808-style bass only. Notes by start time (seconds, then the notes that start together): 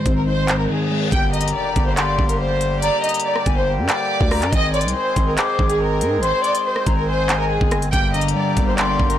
0.06 G#1
1.12 G1
1.76 G1
2.19 G1
3.46 G1
3.78 G2
4.21 D2
4.42 G2
4.53 G#1
4.84 C2
5.16 G#1
5.59 G#1
6.01 G#2
6.17 G#1
6.87 G#1
7.61 G1
7.93 G1
8.57 G1
8.99 G1